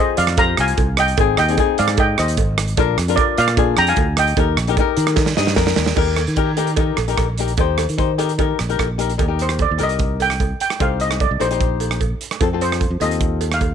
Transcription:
Already playing: C4 F4 G#4
0.00 C5 D#5
0.17 F2 D5 F5, closed hi-hat
0.27 cross-stick, closed hi-hat
0.37 C4 F4 G4 F5 A#5, kick, closed hi-hat, cowbell
0.57 C2 F5 G#5, cross-stick, closed hi-hat
0.68 closed hi-hat
0.77 C2, kick, closed hi-hat, cowbell
0.97 D#5 G5, cross-stick, closed hi-hat
1.08 closed hi-hat
1.17 G#1 C4 D#4 G#4, kick, closed hi-hat, cowbell
1.37 D#2 D#5 G5, cross-stick, closed hi-hat
1.48 C4 D#4 G#4, closed hi-hat
1.57 C4 D#4 G#4, kick, closed hi-hat, cowbell
1.78 G#2 D5 F5, closed hi-hat
1.88 cross-stick, closed hi-hat
1.97 D#5 G5, kick, closed hi-hat, cowbell
2.18 D#2 C5 D#5, cross-stick, closed hi-hat
2.28 closed hi-hat
2.37 G#1, kick, closed hi-hat, cowbell
2.58 cross-stick, closed hi-hat
2.68 closed hi-hat
2.77 A#1 D4 F4 A#4, kick, closed hi-hat, cowbell
2.98 F2, cross-stick, closed hi-hat
3.08 D4 F4 A#4, closed hi-hat
3.16 A#4 D5, kick, closed hi-hat, cowbell
3.38 A#2 D5 F5, closed hi-hat
3.48 cross-stick, closed hi-hat
3.57 D4 F4 G#4, kick, closed hi-hat, cowbell
3.77 F2 G5 A#5, cross-stick, closed hi-hat
3.87 F5 G#5, closed hi-hat
3.96 D2, kick, closed hi-hat, cowbell
4.17 D#5 G5, cross-stick, closed hi-hat
4.27 closed hi-hat
4.37 D#2 D#4 G4 A#4, kick, closed hi-hat, cowbell
4.57 A#1, cross-stick, closed hi-hat
4.67 D#4 G4 A#4, closed hi-hat
4.77 D#4 G4 A#4, kick, closed hi-hat, cowbell
4.97 D#3, closed hi-hat
5.07 cross-stick, closed hi-hat
5.16 kick, snare, cowbell
5.26 snare
5.37 G2 D#5, snare
5.47 snare
5.56 F2 A#4, kick, snare, cowbell
5.67 snare
5.76 D#2, snare
5.86 snare
5.96 D#2 D#4 G4 A#4, kick, crash, cowbell
6.17 cross-stick, closed hi-hat, cowbell
6.27 D#3, closed hi-hat
6.36 D#4 G4 A#4, kick, closed hi-hat
6.57 D#4 G4 A#4, closed hi-hat, cowbell
6.67 closed hi-hat
6.76 D#4 G4 A#4, kick, closed hi-hat, cowbell
6.97 A#1, cross-stick, closed hi-hat, cowbell
7.08 D#4 G4 A#4, closed hi-hat
7.17 A#1, kick, cross-stick, closed hi-hat, cowbell
7.38 D#4 G4 A#4, closed hi-hat
7.48 closed hi-hat
7.57 D#2 D#4 G4 C5, kick, closed hi-hat, cowbell
7.78 cross-stick, closed hi-hat, cowbell
7.89 D#3, closed hi-hat
7.98 D#4 G4 C5, kick, closed hi-hat
8.18 D#4 G4 A#4, closed hi-hat, cowbell
8.29 closed hi-hat
8.38 D#4 G4 A#4, kick, closed hi-hat, cowbell
8.59 A#1, cross-stick, closed hi-hat
8.69 D#4 G4 A#4, closed hi-hat
8.79 A#1, kick, cross-stick, closed hi-hat, cowbell
8.98 D#4 G4 A#4, closed hi-hat
9.10 closed hi-hat
9.18 D#2 D#4 G4 A#4, kick, closed hi-hat, cowbell
9.28 D#4 G4 A#4
9.39 C5, closed hi-hat
9.49 cross-stick, closed hi-hat
9.59 D5, kick, closed hi-hat, cowbell
9.71 D#2
9.78 C2 D#4 G4 A#4, closed hi-hat, cowbell
9.83 D#5
9.89 closed hi-hat
9.99 kick, closed hi-hat
10.20 G5, closed hi-hat, cowbell
10.30 cross-stick, closed hi-hat
10.40 kick, closed hi-hat, cowbell
10.60 G5, closed hi-hat
10.70 cross-stick, closed hi-hat
10.80 C2 D#4 G4 C5 F5, kick, closed hi-hat, cowbell
11.00 D#5, closed hi-hat
11.11 cross-stick, closed hi-hat
11.20 D5, kick, closed hi-hat, cowbell
11.31 C2
11.40 A#1 D#4 G4 C5, closed hi-hat, cowbell
11.50 D#4 G4 C5, closed hi-hat
11.61 kick, closed hi-hat
11.80 closed hi-hat, cowbell
11.91 cross-stick, closed hi-hat
12.00 kick, closed hi-hat, cowbell
12.21 closed hi-hat
12.31 cross-stick, closed hi-hat
12.41 F2 C4 F4 A4, kick, closed hi-hat, cowbell
12.53 C4 F4 A4
12.61 C5, closed hi-hat
12.72 cross-stick, closed hi-hat
12.81 kick, closed hi-hat, cowbell
12.90 F2
13.00 D#2 C4 F4 A4 D#5, closed hi-hat, cowbell
13.11 closed hi-hat
13.21 kick, closed hi-hat
13.41 closed hi-hat, cowbell
13.52 F5, cross-stick, closed hi-hat
13.61 kick, closed hi-hat, cowbell

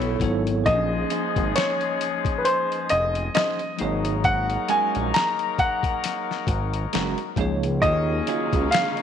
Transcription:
Already playing: B1 C#3 E3 F#3 A3 B3 E4 A4 C#5
0.02 closed hi-hat
0.19 G#1 F#3 B3 E4 A4, kick, closed hi-hat
0.24 C#5
0.47 closed hi-hat
0.64 A#1 F3 G#3 A#3 D#4 G#4 D#5, kick, closed hi-hat
0.68 C5
0.75 C#4
1.10 C#4 D#4 G#4 C5, closed hi-hat
1.36 G#1, kick, closed hi-hat
1.56 C#5, snare, closed hi-hat
1.81 closed hi-hat
2.01 closed hi-hat
2.25 kick, closed hi-hat
2.38 B4
2.45 C5, closed hi-hat
2.72 closed hi-hat
2.89 F1 D#5, closed hi-hat
3.15 closed hi-hat
3.35 C#4 D#4 G#4 C5 D#5, snare, closed hi-hat
3.59 closed hi-hat
3.77 G#1 F#3 A#3 D#4 G#4 A#4, closed hi-hat
3.82 C#5
4.05 closed hi-hat
4.24 F#5, kick, closed hi-hat
4.50 closed hi-hat
4.69 G#3 C#4 F#4 A#4 G#5, closed hi-hat
4.95 A#1, closed hi-hat
5.14 A#5, snare, closed hi-hat
5.39 closed hi-hat
5.59 F#5, kick, closed hi-hat
5.83 kick, closed hi-hat
6.04 snare, closed hi-hat
6.31 snare
6.47 G#1, kick, closed hi-hat
6.74 closed hi-hat
6.93 F#1 G#3 C#4 F#4 A#4, snare, closed hi-hat
7.18 closed hi-hat
7.36 C#2 F3 A#3 D#4 G#4, kick, closed hi-hat
7.41 C#5
7.63 closed hi-hat
7.81 D#2 C#3 D#3 F#3 G#3 A#3 C#4 D#4 F4 G#4 D#5, kick, closed hi-hat
7.85 C#5
8.27 F#3 C#4 F4 G#4, closed hi-hat
8.53 C#2, kick, closed hi-hat
8.71 F5, snare, closed hi-hat
8.97 closed hi-hat

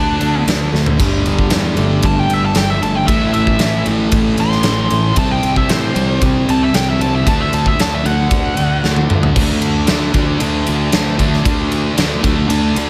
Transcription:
Already playing: D2 D3 A3 D4
0.21 D2 D4, ride
0.46 D2 D3, snare, ride
0.72 D2 A3, snare
0.86 floor tom
0.98 G1 G2 D3 G3, kick, ride, splash
1.25 G1, ride
1.39 kick
1.50 E2 G3, snare, ride
1.75 G1 G2 D3 G3 A3, ride
2.03 G1 G3 A5, kick, ride
2.19 G5
2.29 G1 D4, ride
2.34 E5
2.46 A5
2.54 G1 G2 D3 G3 G5, snare, ride
2.70 E5
2.81 G1 A3 A5, ride
2.95 G5
3.06 A1 A2 E3 A3 E5, kick, ride
3.34 A1 E5, ride
3.47 kick
3.59 A1 E3, snare, ride
3.85 A1 A2 E3 A3, ride
4.12 A1 E3, kick, ride
4.38 A1 C#4 C6, ride
4.52 snare
4.63 A1 A2 E3 A3, snare, ride
4.90 A1 A3, ride
5.16 C2 C3 G3 C4 A5, kick, ride
5.31 G5
5.43 C2, ride
5.56 E5, kick
5.69 A2 E3 C5, snare, ride
5.94 C2 C3 G3 C4, ride
6.22 C2 E3, kick, ride
6.48 C2 C4 A5, ride
6.62 E5
6.73 C2 C3 E3 G3 C4 G5, snare, ride
6.90 E5
7.00 C2 G3 A5, ride
7.15 E5
7.26 D2 D3 A3 D4 A5, kick, ride
7.41 E5
7.53 D2 A5, ride
7.66 E5, kick
7.78 D2 D3 A5, snare, ride
7.94 E5
8.04 D2 D3 A3 D4 F#5, ride
8.31 D2 D3, kick, ride
8.57 D2 D4, ride
8.83 D2 D3 A3 D4, snare
8.96 high tom
9.10 D2 A3, mid tom
9.23 floor tom
9.36 D2 D3 A3 D4, kick, crash
9.62 ride
9.87 D2 D3 A3 D4, snare, ride
10.13 D2 D3 A3 D4, kick, ride
10.40 D2 D3 A3 D4, ride
10.67 D2, ride
10.92 D2 D3 A3 D4, snare, ride
11.19 D3 A3 D4, kick, ride
11.33 snare
11.45 D2 D3 A3 D4, kick, ride
11.72 ride
11.96 D2 D3 A3 D4, snare, ride
12.23 D2 D3 A3 D4, kick, ride
12.49 D2 D3 A3 D4, ride
12.76 D2, ride

